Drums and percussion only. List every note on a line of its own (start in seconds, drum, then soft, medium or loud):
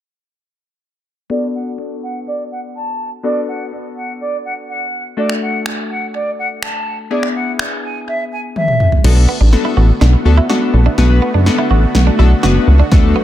5.30 finger snap medium
5.66 finger snap loud
6.63 finger snap loud
7.23 finger snap medium
7.59 finger snap loud
8.56 high tom soft
8.68 mid tom medium
8.80 mid tom medium
8.92 floor tom medium
9.04 snare soft
9.04 crash medium
9.53 snare medium
10.01 snare medium
10.50 snare medium
10.98 snare medium
11.46 snare medium
11.95 snare medium
12.43 snare medium
12.92 kick loud
12.92 snare medium